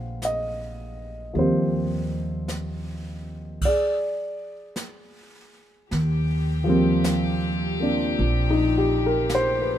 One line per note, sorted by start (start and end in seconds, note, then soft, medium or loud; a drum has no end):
0.00 1.31 A#1 medium
0.00 1.32 F3 soft
0.00 1.33 G3 soft
0.00 1.35 A#3 soft
0.00 1.37 C4 medium
0.00 1.34 C5 soft
0.00 0.20 F5 medium
0.00 3.64 G5 medium
0.22 1.40 D#5 medium
0.22 brush sweep soft
0.22 snare soft
0.22 hi-hat pedal soft
1.33 3.58 D#2 medium
1.33 3.61 F3 soft
1.33 3.62 G3 soft
1.33 3.63 A#3 soft
1.33 brush sweep soft
1.38 3.64 C4 soft
1.38 3.61 G4 soft
1.38 3.22 C5 medium
2.48 brush sweep soft
2.48 snare soft
2.48 hi-hat pedal soft
3.61 4.75 D5 medium
3.61 brush sweep soft
3.61 kick medium
3.61 crash soft
3.67 5.90 G#4 medium
4.76 brush sweep soft
4.76 snare soft
4.76 hi-hat pedal soft
5.91 8.14 D#2 medium
5.91 9.78 C3 medium
5.91 9.78 F3 medium
5.91 9.78 G4 medium
5.91 brush sweep soft
5.91 snare soft
6.64 9.78 F3 medium
6.64 9.78 G3 soft
6.64 7.78 A#3 soft
6.69 7.79 C4 medium
7.04 brush sweep soft
7.04 snare soft
7.04 hi-hat pedal medium
7.80 9.78 A#3 soft
7.80 9.78 C4 soft
7.80 9.78 D4 soft
8.18 9.78 A#1 medium
8.18 brush sweep soft
8.50 8.89 D#4 medium
8.78 9.03 G4 medium
9.06 9.27 A#4 medium
9.29 brush sweep soft
9.29 snare soft
9.29 hi-hat pedal soft
9.35 9.68 C5 medium
9.62 9.78 B4 medium